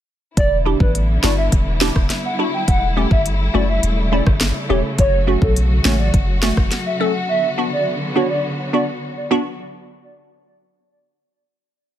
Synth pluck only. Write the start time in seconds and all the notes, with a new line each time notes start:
0.66 D4 E4 G4
1.23 D4 E4 F#4
1.81 D4 E4 G4
2.39 D4 E4 F#4
2.96 A3 C#4 G4
3.54 A3 C#4 F#4
4.12 A3 C#4 E4
4.69 A3 C#4 G4
5.27 A3 C#4 F#4
5.85 A3 C#4 F#4
6.43 A3 C#4 F#4
7.00 A3 C#4 A4
7.58 B3 D4 F#4
8.16 B3 D4 F#4
8.73 B3 D4 F#4
9.31 B3 D4 F#4